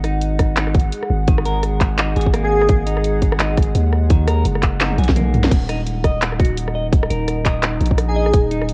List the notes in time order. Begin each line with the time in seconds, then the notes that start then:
Already playing: G#1 G#3 D#4 D#5 F#5 A#5
0.04 D#4 G#4, cross-stick, closed hi-hat
0.21 closed hi-hat
0.39 kick, cross-stick, closed hi-hat
0.57 D#4, clap, closed hi-hat
0.67 cross-stick
0.74 kick, closed hi-hat
0.80 closed hi-hat
0.92 closed hi-hat
1.03 cross-stick
1.10 G#1
1.28 D#3, kick, closed hi-hat
1.38 cross-stick
1.45 A#4, closed hi-hat
1.63 cross-stick, closed hi-hat
1.81 kick, clap, closed hi-hat
1.98 D#4, cross-stick, clap, closed hi-hat
2.16 G#1 G#4, closed hi-hat
2.21 closed hi-hat
2.26 kick
2.34 A#3, cross-stick, closed hi-hat
2.44 G#4
2.62 cross-stick
2.69 G#1, kick, closed hi-hat
2.86 D#4, closed hi-hat
2.97 cross-stick
3.04 closed hi-hat
3.22 kick, closed hi-hat
3.32 cross-stick
3.39 D#4, clap, closed hi-hat
3.57 kick, cross-stick, closed hi-hat
3.62 closed hi-hat
3.75 D#2, closed hi-hat
3.93 cross-stick
4.10 D#3, kick, closed hi-hat
4.28 A#4, cross-stick, closed hi-hat
4.45 F#1, closed hi-hat
4.55 cross-stick
4.63 kick, clap, closed hi-hat
4.81 D#4, snare, clap, closed hi-hat
4.91 high tom
4.98 B1 G#4, closed hi-hat, high tom
5.04 closed hi-hat
5.09 kick, snare
5.16 A#3, closed hi-hat, mid tom
5.19 mid tom
5.21 mid tom
5.24 mid tom
5.27 mid tom
5.29 mid tom
5.30 mid tom
5.32 closed hi-hat, mid tom
5.34 mid tom
5.44 snare
5.51 D#1 D#4, kick, closed hi-hat, crash
5.68 D#4 D#5, cross-stick, closed hi-hat
5.82 A#5
5.87 closed hi-hat
6.04 D#1 D#5, kick, cross-stick, closed hi-hat
6.22 clap, closed hi-hat
6.32 cross-stick
6.40 F#4, kick, closed hi-hat
6.45 closed hi-hat
6.58 closed hi-hat
6.68 cross-stick
6.75 D#5
6.93 kick, closed hi-hat
7.03 cross-stick
7.10 D#1 A#4, closed hi-hat
7.28 cross-stick, closed hi-hat
7.46 D#5, kick, clap, closed hi-hat
7.63 cross-stick, clap, closed hi-hat
7.81 A#1, closed hi-hat
7.86 closed hi-hat
7.91 kick
7.98 cross-stick, closed hi-hat
8.08 G#4
8.16 D#5
8.26 cross-stick
8.34 D#1, kick, closed hi-hat
8.51 D#4, closed hi-hat
8.62 cross-stick
8.69 closed hi-hat